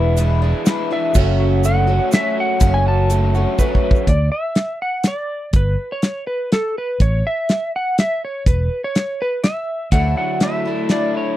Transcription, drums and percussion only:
0.17 closed hi-hat, shaker
0.66 snare, closed hi-hat, shaker
1.14 kick, crash, shaker
1.64 closed hi-hat, shaker
2.12 snare, closed hi-hat, shaker
2.60 kick, closed hi-hat, shaker
3.10 closed hi-hat, shaker
3.35 shaker
3.59 kick, shaker
3.75 kick
3.91 kick
3.95 shaker
4.07 kick, closed hi-hat
4.55 snare, closed hi-hat
5.04 snare, closed hi-hat
5.53 kick, closed hi-hat
6.02 snare, closed hi-hat
6.52 snare, closed hi-hat
7.00 kick, closed hi-hat
7.49 snare, closed hi-hat
7.98 snare, closed hi-hat
8.46 kick, closed hi-hat
8.95 snare, closed hi-hat
9.44 snare, closed hi-hat
9.92 kick, closed hi-hat
10.40 snare, closed hi-hat
10.89 snare, closed hi-hat

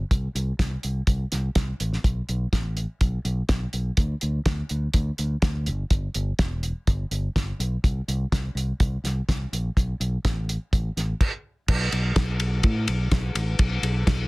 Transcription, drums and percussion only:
0.11 kick, closed hi-hat
0.36 closed hi-hat
0.59 kick, snare, closed hi-hat
0.83 closed hi-hat
1.07 kick, closed hi-hat
1.32 snare, closed hi-hat
1.55 kick, snare, closed hi-hat
1.80 closed hi-hat
1.93 snare
2.04 kick, closed hi-hat
2.29 closed hi-hat
2.53 kick, snare, closed hi-hat
2.77 closed hi-hat
3.01 kick, closed hi-hat
3.25 closed hi-hat
3.49 kick, snare, closed hi-hat
3.73 closed hi-hat
3.97 kick, closed hi-hat
4.21 closed hi-hat
4.46 kick, snare, closed hi-hat
4.69 closed hi-hat
4.94 kick, closed hi-hat
5.18 closed hi-hat
5.42 kick, snare, closed hi-hat
5.66 closed hi-hat
5.90 kick, closed hi-hat
6.14 closed hi-hat
6.39 kick, snare, closed hi-hat
6.63 closed hi-hat
6.87 kick, closed hi-hat
7.11 closed hi-hat
7.36 kick, snare, closed hi-hat
7.60 closed hi-hat
7.84 kick, closed hi-hat
8.09 closed hi-hat
8.32 kick, snare, closed hi-hat
8.57 closed hi-hat
8.80 kick, closed hi-hat
9.05 snare, closed hi-hat
9.29 kick, snare, closed hi-hat
9.53 closed hi-hat
9.77 kick, closed hi-hat
10.01 closed hi-hat
10.25 kick, snare, closed hi-hat
10.49 closed hi-hat
10.73 kick, closed hi-hat
10.97 snare, closed hi-hat
11.21 kick, crash
11.68 kick, crash
11.92 ride
12.16 kick, snare, ride
12.40 ride
12.63 kick, ride
12.88 ride
13.11 kick, snare, ride
13.35 ride
13.59 kick, ride
13.83 ride
14.07 kick, snare, ride

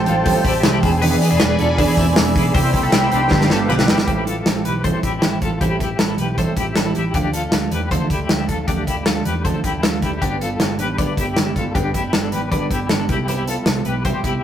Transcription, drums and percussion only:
0.06 hi-hat pedal, open hi-hat
0.26 kick, hi-hat pedal, open hi-hat
0.45 kick, hi-hat pedal, open hi-hat
0.63 snare, clap, hi-hat pedal, open hi-hat
0.83 kick, hi-hat pedal, open hi-hat
1.02 hi-hat pedal, open hi-hat
1.21 hi-hat pedal, open hi-hat
1.40 snare, clap, hi-hat pedal, open hi-hat
1.59 hi-hat pedal, open hi-hat
1.78 kick, hi-hat pedal, open hi-hat
1.97 kick, hi-hat pedal, open hi-hat
2.16 snare, clap, hi-hat pedal, open hi-hat
2.35 kick, hi-hat pedal, open hi-hat
2.55 kick, hi-hat pedal, open hi-hat
2.73 kick, hi-hat pedal, open hi-hat
2.92 snare, clap, hi-hat pedal, open hi-hat
3.12 hi-hat pedal, open hi-hat
3.31 kick, snare
3.41 snare
3.50 snare
3.71 clap
3.79 snare
3.88 snare
3.98 snare
4.08 kick, closed hi-hat
4.27 closed hi-hat
4.46 snare, closed hi-hat
4.65 closed hi-hat
4.84 kick, closed hi-hat
5.03 kick, closed hi-hat
5.22 snare, closed hi-hat
5.42 kick, closed hi-hat
5.61 kick, closed hi-hat
5.80 kick, closed hi-hat
5.99 snare, closed hi-hat
6.18 closed hi-hat
6.38 kick, closed hi-hat
6.57 kick, closed hi-hat
6.76 snare, closed hi-hat
6.95 closed hi-hat
7.14 kick, closed hi-hat
7.33 closed hi-hat
7.52 snare, closed hi-hat
7.72 closed hi-hat
7.91 kick, closed hi-hat
8.10 kick, closed hi-hat
8.29 snare, closed hi-hat
8.49 kick, closed hi-hat
8.68 kick, closed hi-hat
8.87 kick, closed hi-hat
9.06 snare, closed hi-hat
9.25 closed hi-hat
9.45 kick, closed hi-hat
9.64 kick, closed hi-hat
9.83 snare, closed hi-hat
10.02 kick, closed hi-hat
10.22 kick, closed hi-hat
10.41 closed hi-hat
10.60 snare, closed hi-hat
10.79 closed hi-hat
10.98 kick, closed hi-hat
11.17 kick, closed hi-hat
11.37 snare, closed hi-hat
11.56 kick, closed hi-hat
11.75 kick, closed hi-hat
11.94 kick, closed hi-hat
12.13 snare, closed hi-hat
12.32 closed hi-hat
12.52 kick, closed hi-hat
12.71 kick, closed hi-hat
12.89 snare, closed hi-hat
13.09 kick, closed hi-hat
13.28 closed hi-hat
13.47 closed hi-hat
13.66 snare, closed hi-hat
13.85 closed hi-hat
14.05 kick, closed hi-hat
14.24 kick, closed hi-hat

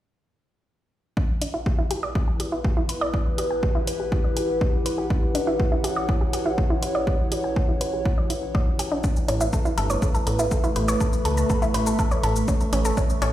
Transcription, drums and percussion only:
1.17 kick
1.42 closed hi-hat
1.66 kick
1.91 closed hi-hat
2.15 kick
2.40 closed hi-hat
2.64 kick
2.89 closed hi-hat
3.14 kick
3.38 closed hi-hat
3.63 kick
3.87 closed hi-hat
4.12 kick
4.37 closed hi-hat
4.61 kick
4.86 closed hi-hat
5.10 kick
5.35 closed hi-hat
5.60 kick
5.84 closed hi-hat
6.09 kick
6.33 closed hi-hat
6.58 kick
6.83 closed hi-hat
7.07 kick
7.32 closed hi-hat
7.56 kick
7.81 closed hi-hat
8.06 kick
8.30 closed hi-hat
8.55 kick
8.79 closed hi-hat
9.04 kick, shaker
9.16 shaker
9.28 closed hi-hat
9.41 shaker
9.53 kick, shaker
9.65 shaker
9.78 closed hi-hat
9.90 shaker
10.02 kick, shaker
10.15 shaker
10.27 closed hi-hat
10.39 shaker
10.51 kick, shaker
10.64 shaker
10.76 closed hi-hat
10.88 shaker
11.01 kick, shaker
11.13 shaker
11.25 closed hi-hat
11.38 shaker
11.50 kick, shaker
11.62 shaker
11.74 closed hi-hat
11.87 shaker
11.99 kick, shaker
12.11 shaker
12.23 closed hi-hat
12.36 shaker
12.48 kick, shaker
12.61 shaker
12.73 closed hi-hat
12.85 shaker
12.97 kick, shaker
13.10 shaker
13.22 closed hi-hat

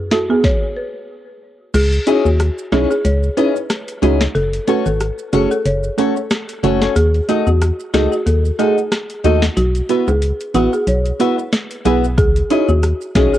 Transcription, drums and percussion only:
0.11 snare
0.44 kick, snare
1.74 closed hi-hat, crash, maracas
1.92 closed hi-hat, maracas
2.07 closed hi-hat, maracas
2.26 maracas
2.40 cross-stick, closed hi-hat, maracas
2.58 maracas
2.72 snare, closed hi-hat, maracas
2.91 maracas
3.05 closed hi-hat, maracas
3.23 maracas
3.37 closed hi-hat, maracas
3.56 maracas
3.70 cross-stick, snare, closed hi-hat, maracas
3.88 closed hi-hat, maracas
4.03 closed hi-hat
4.21 snare, maracas
4.35 closed hi-hat, maracas
4.53 closed hi-hat, maracas
4.68 closed hi-hat, maracas
4.86 maracas
5.00 cross-stick, closed hi-hat, maracas
5.19 maracas
5.33 closed hi-hat, maracas
5.51 maracas
5.66 closed hi-hat, maracas
5.84 maracas
5.98 closed hi-hat, maracas
6.17 maracas
6.31 cross-stick, snare, closed hi-hat, maracas
6.49 closed hi-hat, maracas
6.64 closed hi-hat
6.82 snare, maracas
6.96 closed hi-hat, maracas
7.14 closed hi-hat, maracas
7.29 closed hi-hat, maracas
7.47 maracas
7.62 cross-stick, closed hi-hat, maracas
7.80 maracas
7.94 snare, closed hi-hat, maracas
8.12 maracas
8.27 closed hi-hat, maracas
8.45 maracas
8.59 closed hi-hat, maracas
8.78 maracas
8.92 cross-stick, snare, closed hi-hat, maracas
9.10 closed hi-hat, maracas
9.25 closed hi-hat
9.42 snare, maracas
9.57 closed hi-hat, maracas
9.75 closed hi-hat, maracas
9.89 closed hi-hat, maracas
10.08 high timbale, maracas
10.22 closed hi-hat, maracas
10.41 closed hi-hat, maracas
10.55 closed hi-hat, maracas
10.73 maracas
10.87 closed hi-hat, maracas
11.06 closed hi-hat, maracas
11.20 closed hi-hat, maracas
11.39 maracas
11.53 snare, closed hi-hat, maracas
11.71 closed hi-hat, maracas
11.85 closed hi-hat
12.04 maracas
12.18 kick, closed hi-hat, maracas
12.36 closed hi-hat, maracas
12.50 closed hi-hat, maracas
12.69 maracas
12.83 cross-stick, closed hi-hat, maracas
13.01 maracas
13.15 kick, snare, closed hi-hat, maracas
13.34 maracas

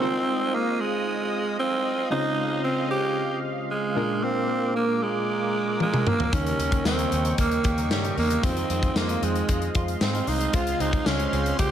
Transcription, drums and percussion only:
5.80 high tom
5.94 mid tom
6.07 mid tom
6.20 floor tom
6.33 kick, closed hi-hat
6.46 closed hi-hat
6.60 closed hi-hat
6.72 kick, closed hi-hat
6.85 snare, tambourine
6.99 closed hi-hat
7.12 closed hi-hat
7.25 closed hi-hat
7.38 kick, closed hi-hat
7.51 closed hi-hat
7.64 kick, closed hi-hat
7.78 closed hi-hat
7.91 snare, tambourine
8.05 closed hi-hat
8.18 open hi-hat
8.30 closed hi-hat
8.43 kick, closed hi-hat
8.57 closed hi-hat
8.70 closed hi-hat
8.83 kick, closed hi-hat
8.96 snare, tambourine
9.09 closed hi-hat
9.23 closed hi-hat
9.36 closed hi-hat
9.49 kick, closed hi-hat
9.62 closed hi-hat
9.75 kick, closed hi-hat
9.88 closed hi-hat
10.01 snare, tambourine
10.15 closed hi-hat
10.27 open hi-hat
10.41 closed hi-hat
10.53 kick, closed hi-hat
10.67 closed hi-hat
10.80 closed hi-hat
10.93 kick, closed hi-hat
11.06 snare, tambourine
11.20 closed hi-hat
11.33 closed hi-hat
11.46 closed hi-hat
11.59 kick, closed hi-hat

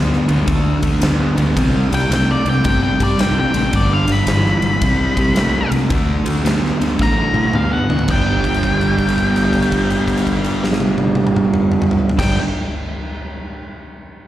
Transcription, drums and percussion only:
0.13 snare
0.29 ride
0.48 kick, ride
0.83 kick, ride
1.02 snare, ride
1.38 ride
1.57 kick, ride
1.93 ride
2.12 snare, ride
2.46 ride
2.64 kick, ride
3.00 kick, ride
3.19 snare, ride
3.54 ride
3.73 kick, ride
4.08 ride
4.27 snare, ride
4.46 snare
4.62 ride
4.81 kick, ride
5.17 kick, ride
5.36 snare, ride
5.72 ride
5.90 kick, ride
6.26 ride
6.46 snare, ride
6.65 snare
6.82 ride
6.99 kick, snare
7.34 high tom
7.44 high tom
7.53 mid tom
7.90 floor tom
7.99 floor tom
8.08 kick, crash
8.44 kick, crash
8.54 crash
8.63 kick, crash
8.81 crash
8.98 kick, crash
9.08 crash
9.18 kick, crash
9.36 crash
9.53 kick, crash
9.62 crash
9.72 kick, crash
9.90 crash
10.08 kick, crash
10.17 crash
10.27 kick, crash
10.44 crash
10.64 snare
10.72 snare
10.80 high tom
10.98 high tom
11.15 high tom
11.27 mid tom
11.36 mid tom
11.54 mid tom
11.72 mid tom
11.82 mid tom
11.91 floor tom
12.09 floor tom
12.19 kick, snare, crash

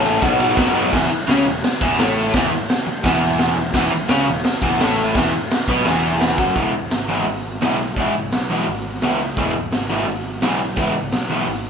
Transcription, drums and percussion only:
0.06 ride
0.22 kick, ride
0.40 ride
0.57 kick, snare, ride
0.76 ride
0.93 kick, snare, crash
1.28 snare, crash
1.63 snare, crash
1.81 kick
1.99 snare, crash
2.33 kick, snare, crash
2.69 snare, crash
3.04 kick, snare, crash
3.38 snare, crash
3.74 kick, snare, crash
4.08 snare, crash
4.44 snare, crash
4.62 kick
4.80 snare, crash
5.15 kick, snare, crash
5.51 snare, crash
5.68 kick
5.85 snare, crash
6.20 snare, crash
6.38 kick
6.56 kick, open hi-hat
6.90 snare, open hi-hat
7.26 open hi-hat
7.61 snare, open hi-hat
7.96 kick, open hi-hat
8.32 snare, open hi-hat
8.67 open hi-hat
9.01 snare, open hi-hat
9.36 kick, open hi-hat
9.71 snare, open hi-hat
10.06 open hi-hat
10.41 snare, open hi-hat
10.76 kick, open hi-hat
11.12 snare, open hi-hat
11.47 open hi-hat

